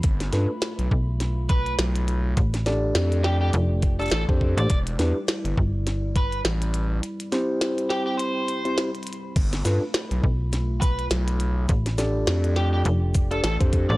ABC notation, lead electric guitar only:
X:1
M:4/4
L:1/16
Q:"Swing 16ths" 1/4=103
K:Gmix
V:1 name="Lead electric guitar"
z8 z2 B2 z4 | z6 G G z3 A A z2 d | z8 z2 B2 z4 | z6 G G c4 z4 |
z8 z2 B2 z4 | z6 G G z3 A A z2 d |]